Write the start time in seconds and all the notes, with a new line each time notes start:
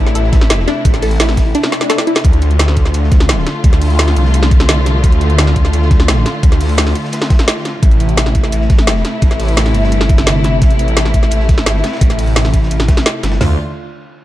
Already playing: A1 C3 A3 E4
0.06 snare
0.15 A1 A4, closed hi-hat, ride
0.24 snare
0.32 E4, kick, snare, closed hi-hat, ride
0.41 snare
0.50 snare, closed hi-hat, ride
0.59 snare
0.67 D4, snare, closed hi-hat, ride
0.85 A1, kick, closed hi-hat, ride
0.94 snare, closed hi-hat
1.02 A4, closed hi-hat, open hi-hat
1.11 closed hi-hat
1.20 E4, snare, closed hi-hat, ride
1.29 snare
1.37 A1, kick, snare, closed hi-hat, ride
1.55 D4, closed hi-hat, ride, swell
1.63 snare, ride
1.72 snare, closed hi-hat
1.81 snare, closed hi-hat, ride
1.89 A4, snare, closed hi-hat, ride
1.98 snare
2.07 E4, closed hi-hat, ride
2.15 snare, ride
2.24 D2 D3 A3 F4, kick, closed hi-hat, ride
2.33 closed hi-hat
2.42 closed hi-hat, ride
2.51 closed hi-hat
2.59 snare, closed hi-hat, ride
2.68 snare
2.76 D2, kick, closed hi-hat, ride
2.86 snare
2.94 D2, closed hi-hat, ride
3.04 snare
3.11 kick, snare, closed hi-hat, ride
3.20 snare
3.29 snare, closed hi-hat, ride
3.39 snare
3.46 snare, closed hi-hat, ride
3.64 D2, kick, closed hi-hat, ride
3.73 snare, closed hi-hat
3.82 closed hi-hat, open hi-hat
3.90 closed hi-hat
3.99 snare, closed hi-hat, ride
4.08 snare
4.16 C2, closed hi-hat, ride
4.25 snare
4.34 closed hi-hat, ride
4.43 snare
4.51 kick, closed hi-hat, ride
4.60 snare, closed hi-hat
4.68 snare, closed hi-hat, ride
4.86 snare, closed hi-hat, ride
5.04 D2, kick, closed hi-hat, ride
5.12 closed hi-hat
5.21 closed hi-hat, ride
5.30 closed hi-hat
5.38 snare, closed hi-hat, ride
5.47 snare
5.56 D2, kick, closed hi-hat, ride
5.65 snare
5.73 D2, closed hi-hat, ride
5.82 snare
5.91 kick, snare, closed hi-hat, ride
6.00 snare
6.08 snare, closed hi-hat, ride
6.16 snare
6.25 snare, closed hi-hat, ride
6.43 D2, kick, closed hi-hat, ride
6.52 snare, closed hi-hat
6.61 closed hi-hat, open hi-hat
6.69 closed hi-hat
6.77 snare, closed hi-hat, ride
6.87 snare
6.95 closed hi-hat, ride
7.04 snare
7.12 snare, closed hi-hat, ride
7.22 snare, ride
7.30 kick, snare, closed hi-hat, ride
7.39 snare, closed hi-hat, ride
7.48 snare, closed hi-hat, ride
7.57 snare
7.65 snare, closed hi-hat, ride
7.82 A1 C3 A3 E4, kick, closed hi-hat, ride
7.91 closed hi-hat
8.00 closed hi-hat, ride
8.09 closed hi-hat
8.17 snare, closed hi-hat, ride
8.26 snare
8.35 A1, kick, closed hi-hat, ride
8.44 snare
8.52 A1, closed hi-hat, ride
8.61 snare
8.70 kick, snare, closed hi-hat, ride
8.79 snare
8.87 snare, closed hi-hat, ride
8.97 snare
9.05 snare, closed hi-hat, ride
9.22 A1, kick, closed hi-hat, ride
9.31 snare, closed hi-hat
9.40 closed hi-hat, open hi-hat
9.48 closed hi-hat
9.57 snare, closed hi-hat, ride
9.66 snare
9.74 G1, closed hi-hat, ride
9.83 snare
9.92 closed hi-hat, ride
10.01 snare
10.09 kick, closed hi-hat, ride
10.18 snare, closed hi-hat
10.26 snare, closed hi-hat, ride
10.44 snare, closed hi-hat, ride
10.62 A1, kick, closed hi-hat, ride
10.70 closed hi-hat
10.79 closed hi-hat, ride
10.88 closed hi-hat
10.97 snare, closed hi-hat, ride
11.05 snare
11.14 A1, kick, closed hi-hat, ride
11.23 snare
11.31 A1, closed hi-hat, ride
11.40 snare
11.49 kick, snare, closed hi-hat, ride
11.58 snare
11.66 snare, closed hi-hat, ride
11.75 snare
11.84 snare, closed hi-hat, ride
11.93 snare, ride
11.97 snare, ride
12.01 A1, kick, closed hi-hat, ride
12.10 snare, closed hi-hat
12.19 closed hi-hat, open hi-hat
12.27 closed hi-hat
12.36 snare, closed hi-hat, ride
12.45 snare
12.54 A1, kick, closed hi-hat, ride
12.63 snare
12.71 A1, closed hi-hat, ride
12.80 snare
12.88 kick, snare, closed hi-hat, ride
12.97 snare, closed hi-hat, ride
13.06 snare, closed hi-hat, ride
13.23 G1, snare, closed hi-hat, ride
13.31 snare, ride
13.41 D2 D3 A3 F4, snare, floor tom, open hi-hat